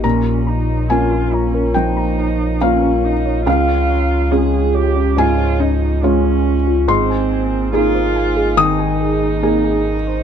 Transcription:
X:1
M:4/4
L:1/16
Q:1/4=70
K:Ab
V:1 name="Synth pluck"
B b b z B d b B b b B z b B z d | D d d z D F d D d d D z d D z F | A a a z A c a A a a A z a A z c |]
V:2 name="Analog synth pad"
[B,Fd]16 | [A,Fd]16 | [B,Ee]16 |]
V:3 name="Cello"
D2 E2 F2 D2 E4 D2 E2 | F4 A2 G2 F2 E2 D4 | C4 F4 E8 |]
V:4 name="Felt piano"
b4 a4 g4 f4 | f8 a8 | c'8 e'8 |]
V:5 name="Felt piano"
B,,4 [B,DF]4 F,4 [B,DF]4 | D,,4 [A,DF]4 A,,4 [A,DF]4 | A,,4 [B,EA]4 E,4 [B,EA]4 |]
V:6 name="Sub bass" clef=bass
B,,,16 | D,,16 | A,,,16 |]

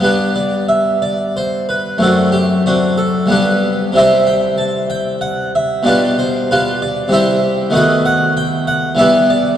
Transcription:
X:1
M:3/4
L:1/8
Q:1/4=94
K:G
V:1 name="Harpsichord"
[DGB] d e d c B | [DFA] G [CDF] A [DGB]2 | [Gce] g a g f e | [GBd] c [=FGB] d [Gce]2 |
[AB^d] f g f [GBe] =d |]
V:2 name="Harpsichord"
[G,,G,B,]6 | [F,,A,C]4 [G,,G,B,]2 | [C,G,CE]6 | [B,,G,D=F]4 [C,G,CE]2 |
[^D,A,B,F]4 [E,G,B,E]2 |]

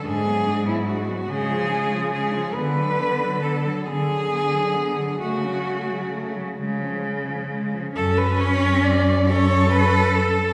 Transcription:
X:1
M:6/8
L:1/16
Q:3/8=45
K:F#m
V:1 name="Cello"
G3 E F2 G4 G2 | B4 A2 G6 | F6 z6 | A B c2 d2 c2 B2 A2 |]
V:2 name="Cello"
D B, D B, D B, C ^E C E C E | B, D B, D B, D B, D B, D B, D | A, C A, C A, C G, C G, C G, C | C6 A6 |]
V:3 name="Cello" clef=bass
G, F, G, F, G, F, G, ^E, G, E, G, E, | D, F, D, F, D, F, D, F, D, F, D, F, | A, F, A, F, A, F, G, ^E, G, E, G, E, | C12 |]
V:4 name="Cello" clef=bass
G,,6 C,6 | D,6 D,6 | C,6 C,6 | F,,12 |]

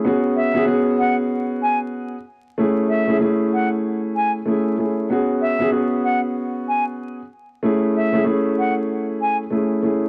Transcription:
X:1
M:4/4
L:1/16
Q:"Swing 16ths" 1/4=95
K:A
V:1 name="Flute"
z2 e2 z2 f z3 g z4 z | z2 e2 z2 f z3 g z4 z | z2 e2 z2 f z3 g z4 z | z2 e2 z2 f z3 g z4 z |]
V:2 name="Grand piano"
[B,CFG]3 [B,CFG] [B,CFG]8- [B,CFG] z3 | [A,CEG]3 [A,CEG] [A,CEG]6- [A,CEG] z [A,CEG]2 [A,CEG]2 | [B,CFG]3 [B,CFG] [B,CFG]8- [B,CFG] z3 | [A,CEG]3 [A,CEG] [A,CEG]6- [A,CEG] z [A,CEG]2 [A,CEG]2 |]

